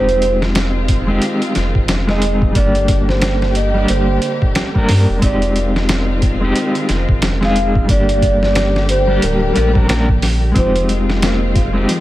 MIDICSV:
0, 0, Header, 1, 7, 480
1, 0, Start_track
1, 0, Tempo, 666667
1, 1838, Time_signature, 4, 2, 24, 8
1, 8641, End_track
2, 0, Start_track
2, 0, Title_t, "Soft synth lead"
2, 0, Program_c, 0, 80
2, 0, Note_on_c, 0, 72, 104
2, 262, Note_off_c, 0, 72, 0
2, 1507, Note_on_c, 0, 75, 101
2, 1812, Note_off_c, 0, 75, 0
2, 1846, Note_on_c, 0, 74, 96
2, 2183, Note_off_c, 0, 74, 0
2, 2228, Note_on_c, 0, 72, 100
2, 2532, Note_off_c, 0, 72, 0
2, 2564, Note_on_c, 0, 75, 93
2, 2782, Note_off_c, 0, 75, 0
2, 2800, Note_on_c, 0, 72, 102
2, 3140, Note_off_c, 0, 72, 0
2, 3767, Note_on_c, 0, 74, 103
2, 4103, Note_off_c, 0, 74, 0
2, 5353, Note_on_c, 0, 77, 97
2, 5655, Note_off_c, 0, 77, 0
2, 5692, Note_on_c, 0, 74, 102
2, 6025, Note_off_c, 0, 74, 0
2, 6069, Note_on_c, 0, 74, 108
2, 6373, Note_off_c, 0, 74, 0
2, 6406, Note_on_c, 0, 72, 96
2, 6623, Note_off_c, 0, 72, 0
2, 6648, Note_on_c, 0, 70, 107
2, 6983, Note_off_c, 0, 70, 0
2, 7609, Note_on_c, 0, 72, 98
2, 7944, Note_off_c, 0, 72, 0
2, 8641, End_track
3, 0, Start_track
3, 0, Title_t, "Clean electric guitar"
3, 0, Program_c, 1, 27
3, 0, Note_on_c, 1, 56, 71
3, 0, Note_on_c, 1, 60, 71
3, 0, Note_on_c, 1, 63, 67
3, 0, Note_on_c, 1, 67, 79
3, 733, Note_off_c, 1, 56, 0
3, 743, Note_off_c, 1, 60, 0
3, 752, Note_off_c, 1, 63, 0
3, 761, Note_off_c, 1, 67, 0
3, 770, Note_on_c, 1, 56, 93
3, 779, Note_on_c, 1, 60, 86
3, 788, Note_on_c, 1, 63, 80
3, 798, Note_on_c, 1, 67, 105
3, 1089, Note_off_c, 1, 56, 0
3, 1093, Note_off_c, 1, 60, 0
3, 1098, Note_off_c, 1, 63, 0
3, 1103, Note_off_c, 1, 67, 0
3, 1492, Note_on_c, 1, 56, 105
3, 1503, Note_on_c, 1, 60, 84
3, 1511, Note_on_c, 1, 63, 88
3, 1520, Note_on_c, 1, 68, 109
3, 1810, Note_off_c, 1, 56, 0
3, 1816, Note_off_c, 1, 60, 0
3, 1816, Note_on_c, 1, 55, 77
3, 1820, Note_off_c, 1, 63, 0
3, 1824, Note_off_c, 1, 68, 0
3, 1834, Note_on_c, 1, 58, 71
3, 1851, Note_on_c, 1, 62, 72
3, 1871, Note_on_c, 1, 67, 85
3, 2656, Note_off_c, 1, 55, 0
3, 2665, Note_off_c, 1, 58, 0
3, 2674, Note_off_c, 1, 62, 0
3, 2684, Note_off_c, 1, 67, 0
3, 2694, Note_on_c, 1, 55, 100
3, 2703, Note_on_c, 1, 58, 90
3, 2712, Note_on_c, 1, 62, 89
3, 2721, Note_on_c, 1, 67, 105
3, 3011, Note_off_c, 1, 55, 0
3, 3016, Note_off_c, 1, 58, 0
3, 3020, Note_off_c, 1, 62, 0
3, 3025, Note_off_c, 1, 67, 0
3, 3417, Note_on_c, 1, 55, 96
3, 3424, Note_on_c, 1, 58, 95
3, 3434, Note_on_c, 1, 62, 92
3, 3444, Note_on_c, 1, 70, 112
3, 3733, Note_off_c, 1, 55, 0
3, 3736, Note_off_c, 1, 58, 0
3, 3736, Note_on_c, 1, 56, 73
3, 3741, Note_off_c, 1, 62, 0
3, 3746, Note_off_c, 1, 70, 0
3, 3754, Note_on_c, 1, 60, 68
3, 3771, Note_on_c, 1, 63, 71
3, 3790, Note_on_c, 1, 67, 87
3, 4576, Note_off_c, 1, 56, 0
3, 4585, Note_off_c, 1, 60, 0
3, 4594, Note_off_c, 1, 63, 0
3, 4603, Note_off_c, 1, 67, 0
3, 4613, Note_on_c, 1, 56, 90
3, 4623, Note_on_c, 1, 60, 88
3, 4632, Note_on_c, 1, 63, 91
3, 4640, Note_on_c, 1, 67, 108
3, 4931, Note_off_c, 1, 56, 0
3, 4936, Note_off_c, 1, 60, 0
3, 4940, Note_off_c, 1, 63, 0
3, 4944, Note_off_c, 1, 67, 0
3, 5334, Note_on_c, 1, 56, 103
3, 5343, Note_on_c, 1, 60, 88
3, 5351, Note_on_c, 1, 63, 92
3, 5361, Note_on_c, 1, 68, 107
3, 5651, Note_off_c, 1, 56, 0
3, 5655, Note_on_c, 1, 55, 75
3, 5656, Note_off_c, 1, 60, 0
3, 5660, Note_off_c, 1, 63, 0
3, 5665, Note_off_c, 1, 68, 0
3, 5674, Note_on_c, 1, 58, 69
3, 5692, Note_on_c, 1, 62, 73
3, 5709, Note_on_c, 1, 67, 81
3, 6496, Note_off_c, 1, 55, 0
3, 6505, Note_off_c, 1, 58, 0
3, 6514, Note_off_c, 1, 62, 0
3, 6523, Note_off_c, 1, 67, 0
3, 6533, Note_on_c, 1, 55, 98
3, 6541, Note_on_c, 1, 58, 83
3, 6550, Note_on_c, 1, 62, 83
3, 6559, Note_on_c, 1, 67, 102
3, 6851, Note_off_c, 1, 55, 0
3, 6855, Note_off_c, 1, 58, 0
3, 6859, Note_off_c, 1, 62, 0
3, 6863, Note_on_c, 1, 55, 96
3, 6864, Note_off_c, 1, 67, 0
3, 6873, Note_on_c, 1, 58, 85
3, 6881, Note_on_c, 1, 62, 81
3, 6891, Note_on_c, 1, 67, 105
3, 6980, Note_off_c, 1, 55, 0
3, 6985, Note_off_c, 1, 58, 0
3, 6989, Note_off_c, 1, 62, 0
3, 6993, Note_off_c, 1, 67, 0
3, 7010, Note_on_c, 1, 55, 90
3, 7019, Note_on_c, 1, 58, 78
3, 7027, Note_on_c, 1, 62, 81
3, 7037, Note_on_c, 1, 70, 99
3, 7089, Note_off_c, 1, 55, 0
3, 7094, Note_off_c, 1, 58, 0
3, 7098, Note_off_c, 1, 62, 0
3, 7102, Note_off_c, 1, 70, 0
3, 7105, Note_on_c, 1, 55, 92
3, 7115, Note_on_c, 1, 58, 86
3, 7125, Note_on_c, 1, 62, 81
3, 7134, Note_on_c, 1, 70, 108
3, 7247, Note_off_c, 1, 55, 0
3, 7252, Note_off_c, 1, 58, 0
3, 7257, Note_off_c, 1, 62, 0
3, 7261, Note_off_c, 1, 70, 0
3, 7572, Note_on_c, 1, 56, 78
3, 7589, Note_on_c, 1, 60, 71
3, 7610, Note_on_c, 1, 63, 69
3, 7627, Note_on_c, 1, 67, 82
3, 8414, Note_off_c, 1, 56, 0
3, 8423, Note_off_c, 1, 60, 0
3, 8433, Note_off_c, 1, 63, 0
3, 8442, Note_off_c, 1, 67, 0
3, 8447, Note_on_c, 1, 56, 95
3, 8456, Note_on_c, 1, 60, 93
3, 8466, Note_on_c, 1, 63, 90
3, 8475, Note_on_c, 1, 67, 105
3, 8641, Note_off_c, 1, 56, 0
3, 8641, Note_off_c, 1, 60, 0
3, 8641, Note_off_c, 1, 63, 0
3, 8641, Note_off_c, 1, 67, 0
3, 8641, End_track
4, 0, Start_track
4, 0, Title_t, "String section"
4, 0, Program_c, 2, 48
4, 0, Note_on_c, 2, 51, 79
4, 0, Note_on_c, 2, 56, 74
4, 0, Note_on_c, 2, 60, 73
4, 0, Note_on_c, 2, 65, 89
4, 1818, Note_off_c, 2, 56, 0
4, 1819, Note_off_c, 2, 65, 0
4, 1820, Note_off_c, 2, 51, 0
4, 1820, Note_off_c, 2, 60, 0
4, 1833, Note_on_c, 2, 58, 75
4, 1834, Note_on_c, 2, 55, 74
4, 1834, Note_on_c, 2, 67, 90
4, 1835, Note_on_c, 2, 50, 83
4, 3736, Note_off_c, 2, 58, 0
4, 3737, Note_off_c, 2, 50, 0
4, 3737, Note_off_c, 2, 55, 0
4, 3737, Note_off_c, 2, 67, 0
4, 3751, Note_on_c, 2, 51, 83
4, 3751, Note_on_c, 2, 60, 76
4, 3751, Note_on_c, 2, 65, 84
4, 3753, Note_on_c, 2, 56, 73
4, 5655, Note_off_c, 2, 51, 0
4, 5655, Note_off_c, 2, 60, 0
4, 5655, Note_off_c, 2, 65, 0
4, 5656, Note_off_c, 2, 56, 0
4, 5674, Note_on_c, 2, 55, 73
4, 5674, Note_on_c, 2, 58, 74
4, 5675, Note_on_c, 2, 50, 82
4, 5675, Note_on_c, 2, 67, 90
4, 7577, Note_off_c, 2, 50, 0
4, 7577, Note_off_c, 2, 55, 0
4, 7577, Note_off_c, 2, 58, 0
4, 7577, Note_off_c, 2, 67, 0
4, 7592, Note_on_c, 2, 51, 79
4, 7594, Note_on_c, 2, 56, 75
4, 7595, Note_on_c, 2, 60, 73
4, 7595, Note_on_c, 2, 65, 85
4, 8641, Note_off_c, 2, 51, 0
4, 8641, Note_off_c, 2, 56, 0
4, 8641, Note_off_c, 2, 60, 0
4, 8641, Note_off_c, 2, 65, 0
4, 8641, End_track
5, 0, Start_track
5, 0, Title_t, "Nylon-string guitar"
5, 0, Program_c, 3, 24
5, 7597, Note_on_c, 3, 53, 84
5, 7818, Note_off_c, 3, 53, 0
5, 7836, Note_on_c, 3, 56, 95
5, 8068, Note_off_c, 3, 56, 0
5, 8076, Note_on_c, 3, 58, 78
5, 8298, Note_off_c, 3, 58, 0
5, 8317, Note_on_c, 3, 65, 69
5, 8548, Note_off_c, 3, 65, 0
5, 8556, Note_on_c, 3, 53, 80
5, 8641, Note_off_c, 3, 53, 0
5, 8641, End_track
6, 0, Start_track
6, 0, Title_t, "Sub bass"
6, 0, Program_c, 4, 38
6, 0, Note_on_c, 4, 29, 101
6, 860, Note_off_c, 4, 29, 0
6, 1121, Note_on_c, 4, 29, 94
6, 1246, Note_off_c, 4, 29, 0
6, 1263, Note_on_c, 4, 29, 81
6, 1820, Note_off_c, 4, 29, 0
6, 1840, Note_on_c, 4, 31, 111
6, 2780, Note_off_c, 4, 31, 0
6, 2800, Note_on_c, 4, 31, 101
6, 3016, Note_off_c, 4, 31, 0
6, 3520, Note_on_c, 4, 43, 82
6, 3645, Note_off_c, 4, 43, 0
6, 3663, Note_on_c, 4, 29, 102
6, 3747, Note_off_c, 4, 29, 0
6, 3761, Note_on_c, 4, 29, 105
6, 4701, Note_off_c, 4, 29, 0
6, 4960, Note_on_c, 4, 29, 100
6, 5085, Note_off_c, 4, 29, 0
6, 5104, Note_on_c, 4, 29, 86
6, 5661, Note_off_c, 4, 29, 0
6, 5682, Note_on_c, 4, 31, 107
6, 6621, Note_off_c, 4, 31, 0
6, 6642, Note_on_c, 4, 26, 95
6, 6857, Note_off_c, 4, 26, 0
6, 6883, Note_on_c, 4, 34, 93
6, 7582, Note_off_c, 4, 34, 0
6, 7602, Note_on_c, 4, 29, 103
6, 8541, Note_off_c, 4, 29, 0
6, 8641, End_track
7, 0, Start_track
7, 0, Title_t, "Drums"
7, 62, Note_on_c, 9, 42, 41
7, 134, Note_off_c, 9, 42, 0
7, 157, Note_on_c, 9, 42, 66
7, 229, Note_off_c, 9, 42, 0
7, 304, Note_on_c, 9, 38, 53
7, 376, Note_off_c, 9, 38, 0
7, 397, Note_on_c, 9, 42, 89
7, 401, Note_on_c, 9, 38, 120
7, 469, Note_off_c, 9, 42, 0
7, 473, Note_off_c, 9, 38, 0
7, 637, Note_on_c, 9, 36, 95
7, 637, Note_on_c, 9, 42, 70
7, 709, Note_off_c, 9, 36, 0
7, 709, Note_off_c, 9, 42, 0
7, 876, Note_on_c, 9, 42, 82
7, 948, Note_off_c, 9, 42, 0
7, 1021, Note_on_c, 9, 42, 44
7, 1093, Note_off_c, 9, 42, 0
7, 1117, Note_on_c, 9, 42, 68
7, 1120, Note_on_c, 9, 38, 52
7, 1189, Note_off_c, 9, 42, 0
7, 1192, Note_off_c, 9, 38, 0
7, 1261, Note_on_c, 9, 36, 92
7, 1333, Note_off_c, 9, 36, 0
7, 1356, Note_on_c, 9, 42, 87
7, 1360, Note_on_c, 9, 38, 109
7, 1428, Note_off_c, 9, 42, 0
7, 1432, Note_off_c, 9, 38, 0
7, 1502, Note_on_c, 9, 38, 46
7, 1574, Note_off_c, 9, 38, 0
7, 1596, Note_on_c, 9, 42, 72
7, 1668, Note_off_c, 9, 42, 0
7, 1741, Note_on_c, 9, 36, 93
7, 1813, Note_off_c, 9, 36, 0
7, 1838, Note_on_c, 9, 36, 111
7, 1838, Note_on_c, 9, 42, 87
7, 1910, Note_off_c, 9, 36, 0
7, 1910, Note_off_c, 9, 42, 0
7, 1980, Note_on_c, 9, 42, 46
7, 2052, Note_off_c, 9, 42, 0
7, 2076, Note_on_c, 9, 42, 71
7, 2077, Note_on_c, 9, 36, 93
7, 2148, Note_off_c, 9, 42, 0
7, 2149, Note_off_c, 9, 36, 0
7, 2224, Note_on_c, 9, 38, 38
7, 2296, Note_off_c, 9, 38, 0
7, 2315, Note_on_c, 9, 42, 90
7, 2319, Note_on_c, 9, 38, 124
7, 2387, Note_off_c, 9, 42, 0
7, 2391, Note_off_c, 9, 38, 0
7, 2463, Note_on_c, 9, 38, 47
7, 2535, Note_off_c, 9, 38, 0
7, 2556, Note_on_c, 9, 42, 69
7, 2628, Note_off_c, 9, 42, 0
7, 2796, Note_on_c, 9, 42, 83
7, 2868, Note_off_c, 9, 42, 0
7, 3037, Note_on_c, 9, 42, 64
7, 3109, Note_off_c, 9, 42, 0
7, 3182, Note_on_c, 9, 36, 99
7, 3254, Note_off_c, 9, 36, 0
7, 3277, Note_on_c, 9, 42, 87
7, 3281, Note_on_c, 9, 38, 113
7, 3349, Note_off_c, 9, 42, 0
7, 3353, Note_off_c, 9, 38, 0
7, 3422, Note_on_c, 9, 36, 90
7, 3494, Note_off_c, 9, 36, 0
7, 3518, Note_on_c, 9, 46, 82
7, 3521, Note_on_c, 9, 38, 59
7, 3590, Note_off_c, 9, 46, 0
7, 3593, Note_off_c, 9, 38, 0
7, 3759, Note_on_c, 9, 36, 116
7, 3760, Note_on_c, 9, 42, 91
7, 3831, Note_off_c, 9, 36, 0
7, 3832, Note_off_c, 9, 42, 0
7, 3902, Note_on_c, 9, 42, 48
7, 3974, Note_off_c, 9, 42, 0
7, 4001, Note_on_c, 9, 42, 68
7, 4073, Note_off_c, 9, 42, 0
7, 4149, Note_on_c, 9, 38, 52
7, 4221, Note_off_c, 9, 38, 0
7, 4240, Note_on_c, 9, 42, 95
7, 4243, Note_on_c, 9, 38, 121
7, 4312, Note_off_c, 9, 42, 0
7, 4315, Note_off_c, 9, 38, 0
7, 4479, Note_on_c, 9, 36, 97
7, 4479, Note_on_c, 9, 42, 70
7, 4551, Note_off_c, 9, 36, 0
7, 4551, Note_off_c, 9, 42, 0
7, 4720, Note_on_c, 9, 42, 83
7, 4792, Note_off_c, 9, 42, 0
7, 4861, Note_on_c, 9, 42, 42
7, 4933, Note_off_c, 9, 42, 0
7, 4959, Note_on_c, 9, 42, 66
7, 4962, Note_on_c, 9, 38, 50
7, 5031, Note_off_c, 9, 42, 0
7, 5034, Note_off_c, 9, 38, 0
7, 5102, Note_on_c, 9, 36, 103
7, 5174, Note_off_c, 9, 36, 0
7, 5198, Note_on_c, 9, 42, 81
7, 5201, Note_on_c, 9, 38, 113
7, 5270, Note_off_c, 9, 42, 0
7, 5273, Note_off_c, 9, 38, 0
7, 5347, Note_on_c, 9, 38, 48
7, 5419, Note_off_c, 9, 38, 0
7, 5441, Note_on_c, 9, 42, 74
7, 5513, Note_off_c, 9, 42, 0
7, 5583, Note_on_c, 9, 36, 101
7, 5655, Note_off_c, 9, 36, 0
7, 5680, Note_on_c, 9, 36, 113
7, 5680, Note_on_c, 9, 42, 88
7, 5752, Note_off_c, 9, 36, 0
7, 5752, Note_off_c, 9, 42, 0
7, 5825, Note_on_c, 9, 42, 46
7, 5897, Note_off_c, 9, 42, 0
7, 5920, Note_on_c, 9, 36, 91
7, 5922, Note_on_c, 9, 42, 66
7, 5992, Note_off_c, 9, 36, 0
7, 5994, Note_off_c, 9, 42, 0
7, 6068, Note_on_c, 9, 38, 40
7, 6140, Note_off_c, 9, 38, 0
7, 6159, Note_on_c, 9, 42, 92
7, 6163, Note_on_c, 9, 38, 113
7, 6231, Note_off_c, 9, 42, 0
7, 6235, Note_off_c, 9, 38, 0
7, 6308, Note_on_c, 9, 38, 47
7, 6380, Note_off_c, 9, 38, 0
7, 6400, Note_on_c, 9, 42, 73
7, 6472, Note_off_c, 9, 42, 0
7, 6641, Note_on_c, 9, 42, 90
7, 6713, Note_off_c, 9, 42, 0
7, 6880, Note_on_c, 9, 42, 68
7, 6952, Note_off_c, 9, 42, 0
7, 7023, Note_on_c, 9, 36, 101
7, 7095, Note_off_c, 9, 36, 0
7, 7122, Note_on_c, 9, 42, 81
7, 7126, Note_on_c, 9, 38, 114
7, 7194, Note_off_c, 9, 42, 0
7, 7198, Note_off_c, 9, 38, 0
7, 7263, Note_on_c, 9, 36, 91
7, 7335, Note_off_c, 9, 36, 0
7, 7361, Note_on_c, 9, 46, 83
7, 7365, Note_on_c, 9, 38, 60
7, 7433, Note_off_c, 9, 46, 0
7, 7437, Note_off_c, 9, 38, 0
7, 7599, Note_on_c, 9, 36, 111
7, 7601, Note_on_c, 9, 42, 85
7, 7671, Note_off_c, 9, 36, 0
7, 7673, Note_off_c, 9, 42, 0
7, 7744, Note_on_c, 9, 42, 44
7, 7816, Note_off_c, 9, 42, 0
7, 7841, Note_on_c, 9, 42, 69
7, 7913, Note_off_c, 9, 42, 0
7, 7989, Note_on_c, 9, 38, 49
7, 8061, Note_off_c, 9, 38, 0
7, 8081, Note_on_c, 9, 42, 96
7, 8085, Note_on_c, 9, 38, 118
7, 8153, Note_off_c, 9, 42, 0
7, 8157, Note_off_c, 9, 38, 0
7, 8319, Note_on_c, 9, 36, 103
7, 8320, Note_on_c, 9, 42, 69
7, 8391, Note_off_c, 9, 36, 0
7, 8392, Note_off_c, 9, 42, 0
7, 8560, Note_on_c, 9, 42, 86
7, 8632, Note_off_c, 9, 42, 0
7, 8641, End_track
0, 0, End_of_file